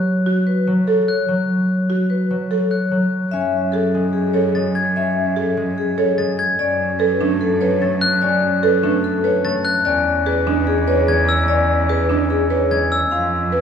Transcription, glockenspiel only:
1.08 F#6
2.71 F#6
4.55 A6
4.75 G#6
6.18 A6
6.39 G#6
7.82 A6
8.01 F#6
9.45 A6
9.65 F#6
11.08 G#6
11.29 E6
12.71 G#6
12.92 E6

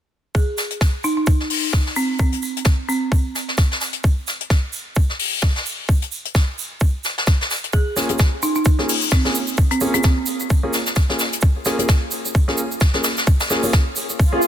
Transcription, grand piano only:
7.96 A#3 C#4 F4 G#4
8.09 A#3 C#4 F4 G#4
8.79 A#3 C#4 F4 G#4
9.25 A#3 C#4 F4 G#4
9.81 A#3 C#4 F4 G#4
9.94 A#3 C#4 F4 G#4
10.63 A#3 C#4 F4 G#4
11.09 A#3 C#4 F4 G#4
11.66 A#3 C#4 F4 G#4
11.79 A#3 C#4 F4 G#4
12.48 A#3 C#4 F4 G#4
12.94 A#3 C#4 F4 G#4
13.50 A#3 C#4 F4 G#4
13.63 A#3 C#4 F4 G#4
14.32 A#3 C#4 F4 G#4

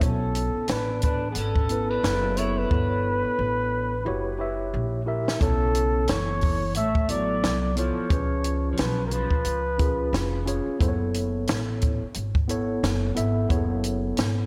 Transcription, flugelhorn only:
0.04 A4
0.70 B4
1.03 B4
1.31 G#4
1.37 A4
1.90 B4
2.38 C#5
2.58 B4
5.43 A4
6.09 C#5
6.76 E5
7.10 D5
7.78 C#5
8.72 C#5
8.79 B4
9.06 A#4
9.13 B4

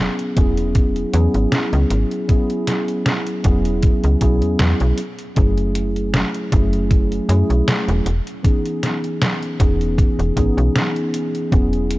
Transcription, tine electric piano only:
Already playing: F#3 B3 C#4 E4 G#4
0.36 F#3 B3 C#4 E4 G#4
1.13 F#3 B3 C#4 E4 G#4
2.28 F#3 B3 C#4 E4 G#4
3.43 F#3 B3 C#4 E4 G#4
4.20 F#3 B3 C#4 E4 G#4
5.35 F#3 A3 C#4 E4 G#4
6.52 F#3 A3 C#4 E4 G#4
7.28 F#3 A3 C#4 E4 G#4
8.43 E3 B3 C#4 D#4 G#4
9.59 E3 B3 C#4 D#4 G#4
10.36 E3 B3 C#4 D#4 G#4
11.51 F#3 B3 C#4 E4 G#4

